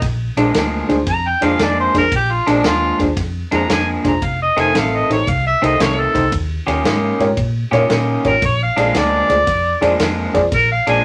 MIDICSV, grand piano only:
0, 0, Header, 1, 2, 480
1, 0, Start_track
1, 0, Tempo, 524934
1, 19, Time_signature, 4, 2, 24, 8
1, 10101, End_track
2, 0, Start_track
2, 0, Title_t, "Grand piano"
2, 0, Program_c, 0, 0
2, 339, Note_on_c, 0, 62, 78
2, 343, Note_on_c, 0, 68, 76
2, 343, Note_on_c, 0, 72, 82
2, 344, Note_on_c, 0, 65, 66
2, 419, Note_off_c, 0, 62, 0
2, 421, Note_off_c, 0, 65, 0
2, 421, Note_off_c, 0, 68, 0
2, 421, Note_off_c, 0, 72, 0
2, 807, Note_on_c, 0, 62, 78
2, 808, Note_on_c, 0, 65, 77
2, 812, Note_on_c, 0, 68, 82
2, 815, Note_on_c, 0, 72, 95
2, 893, Note_off_c, 0, 62, 0
2, 894, Note_off_c, 0, 65, 0
2, 895, Note_off_c, 0, 68, 0
2, 897, Note_off_c, 0, 72, 0
2, 1287, Note_on_c, 0, 62, 77
2, 1293, Note_on_c, 0, 65, 74
2, 1298, Note_on_c, 0, 68, 75
2, 1299, Note_on_c, 0, 72, 92
2, 1373, Note_off_c, 0, 62, 0
2, 1376, Note_off_c, 0, 65, 0
2, 1379, Note_off_c, 0, 68, 0
2, 1379, Note_off_c, 0, 72, 0
2, 1776, Note_on_c, 0, 62, 76
2, 1777, Note_on_c, 0, 65, 64
2, 1778, Note_on_c, 0, 72, 84
2, 1781, Note_on_c, 0, 68, 72
2, 1857, Note_off_c, 0, 62, 0
2, 1858, Note_off_c, 0, 65, 0
2, 1858, Note_off_c, 0, 72, 0
2, 1860, Note_off_c, 0, 68, 0
2, 2259, Note_on_c, 0, 62, 66
2, 2260, Note_on_c, 0, 65, 57
2, 2262, Note_on_c, 0, 68, 66
2, 2268, Note_on_c, 0, 72, 76
2, 2339, Note_off_c, 0, 62, 0
2, 2339, Note_off_c, 0, 65, 0
2, 2340, Note_off_c, 0, 68, 0
2, 2343, Note_off_c, 0, 72, 0
2, 2733, Note_on_c, 0, 62, 68
2, 2736, Note_on_c, 0, 65, 60
2, 2738, Note_on_c, 0, 68, 68
2, 2740, Note_on_c, 0, 72, 73
2, 2816, Note_off_c, 0, 62, 0
2, 2817, Note_off_c, 0, 65, 0
2, 2818, Note_off_c, 0, 68, 0
2, 2819, Note_off_c, 0, 72, 0
2, 3217, Note_on_c, 0, 62, 73
2, 3219, Note_on_c, 0, 65, 71
2, 3220, Note_on_c, 0, 68, 67
2, 3221, Note_on_c, 0, 72, 78
2, 3298, Note_off_c, 0, 62, 0
2, 3299, Note_off_c, 0, 65, 0
2, 3299, Note_off_c, 0, 68, 0
2, 3300, Note_off_c, 0, 72, 0
2, 3689, Note_on_c, 0, 62, 69
2, 3694, Note_on_c, 0, 65, 66
2, 3699, Note_on_c, 0, 68, 64
2, 3702, Note_on_c, 0, 72, 75
2, 3774, Note_off_c, 0, 62, 0
2, 3776, Note_off_c, 0, 65, 0
2, 3779, Note_off_c, 0, 68, 0
2, 3780, Note_off_c, 0, 72, 0
2, 4173, Note_on_c, 0, 63, 58
2, 4174, Note_on_c, 0, 67, 61
2, 4176, Note_on_c, 0, 69, 58
2, 4178, Note_on_c, 0, 72, 69
2, 4256, Note_off_c, 0, 63, 0
2, 4256, Note_off_c, 0, 67, 0
2, 4257, Note_off_c, 0, 69, 0
2, 4258, Note_off_c, 0, 72, 0
2, 4658, Note_on_c, 0, 63, 71
2, 4658, Note_on_c, 0, 67, 64
2, 4661, Note_on_c, 0, 69, 63
2, 4665, Note_on_c, 0, 72, 75
2, 4738, Note_off_c, 0, 63, 0
2, 4738, Note_off_c, 0, 67, 0
2, 4739, Note_off_c, 0, 69, 0
2, 4742, Note_off_c, 0, 72, 0
2, 5137, Note_on_c, 0, 63, 73
2, 5140, Note_on_c, 0, 69, 68
2, 5141, Note_on_c, 0, 67, 69
2, 5144, Note_on_c, 0, 72, 80
2, 5217, Note_off_c, 0, 63, 0
2, 5219, Note_off_c, 0, 67, 0
2, 5219, Note_off_c, 0, 69, 0
2, 5221, Note_off_c, 0, 72, 0
2, 5614, Note_on_c, 0, 63, 74
2, 5615, Note_on_c, 0, 67, 71
2, 5618, Note_on_c, 0, 72, 84
2, 5621, Note_on_c, 0, 69, 69
2, 5696, Note_off_c, 0, 63, 0
2, 5697, Note_off_c, 0, 67, 0
2, 5698, Note_off_c, 0, 72, 0
2, 5700, Note_off_c, 0, 69, 0
2, 6101, Note_on_c, 0, 65, 63
2, 6105, Note_on_c, 0, 67, 61
2, 6107, Note_on_c, 0, 70, 64
2, 6109, Note_on_c, 0, 73, 72
2, 6180, Note_off_c, 0, 65, 0
2, 6181, Note_off_c, 0, 67, 0
2, 6183, Note_off_c, 0, 70, 0
2, 6184, Note_off_c, 0, 73, 0
2, 6581, Note_on_c, 0, 65, 82
2, 6586, Note_on_c, 0, 67, 79
2, 6589, Note_on_c, 0, 73, 87
2, 6590, Note_on_c, 0, 70, 75
2, 6660, Note_off_c, 0, 65, 0
2, 6662, Note_off_c, 0, 67, 0
2, 6664, Note_off_c, 0, 70, 0
2, 6664, Note_off_c, 0, 73, 0
2, 7067, Note_on_c, 0, 65, 97
2, 7067, Note_on_c, 0, 67, 82
2, 7074, Note_on_c, 0, 73, 102
2, 7075, Note_on_c, 0, 70, 82
2, 7143, Note_off_c, 0, 65, 0
2, 7143, Note_off_c, 0, 67, 0
2, 7146, Note_off_c, 0, 70, 0
2, 7146, Note_off_c, 0, 73, 0
2, 7539, Note_on_c, 0, 65, 82
2, 7541, Note_on_c, 0, 67, 72
2, 7541, Note_on_c, 0, 70, 68
2, 7546, Note_on_c, 0, 73, 79
2, 7619, Note_off_c, 0, 65, 0
2, 7620, Note_off_c, 0, 67, 0
2, 7620, Note_off_c, 0, 70, 0
2, 7622, Note_off_c, 0, 73, 0
2, 8019, Note_on_c, 0, 65, 65
2, 8024, Note_on_c, 0, 74, 80
2, 8025, Note_on_c, 0, 68, 68
2, 8025, Note_on_c, 0, 72, 63
2, 8099, Note_off_c, 0, 65, 0
2, 8101, Note_off_c, 0, 68, 0
2, 8101, Note_off_c, 0, 74, 0
2, 8102, Note_off_c, 0, 72, 0
2, 8495, Note_on_c, 0, 65, 71
2, 8499, Note_on_c, 0, 68, 69
2, 8500, Note_on_c, 0, 74, 79
2, 8503, Note_on_c, 0, 72, 63
2, 8576, Note_off_c, 0, 65, 0
2, 8578, Note_off_c, 0, 68, 0
2, 8579, Note_off_c, 0, 74, 0
2, 8580, Note_off_c, 0, 72, 0
2, 8970, Note_on_c, 0, 65, 98
2, 8972, Note_on_c, 0, 68, 84
2, 8978, Note_on_c, 0, 72, 84
2, 8979, Note_on_c, 0, 74, 104
2, 9054, Note_off_c, 0, 65, 0
2, 9055, Note_off_c, 0, 68, 0
2, 9058, Note_off_c, 0, 72, 0
2, 9058, Note_off_c, 0, 74, 0
2, 9454, Note_on_c, 0, 65, 84
2, 9455, Note_on_c, 0, 68, 92
2, 9458, Note_on_c, 0, 72, 79
2, 9459, Note_on_c, 0, 74, 107
2, 9536, Note_off_c, 0, 65, 0
2, 9536, Note_off_c, 0, 68, 0
2, 9538, Note_off_c, 0, 72, 0
2, 9538, Note_off_c, 0, 74, 0
2, 9940, Note_on_c, 0, 65, 71
2, 9944, Note_on_c, 0, 68, 65
2, 9944, Note_on_c, 0, 72, 60
2, 9946, Note_on_c, 0, 74, 75
2, 10018, Note_off_c, 0, 65, 0
2, 10020, Note_off_c, 0, 68, 0
2, 10020, Note_off_c, 0, 72, 0
2, 10021, Note_off_c, 0, 74, 0
2, 10101, End_track
0, 0, End_of_file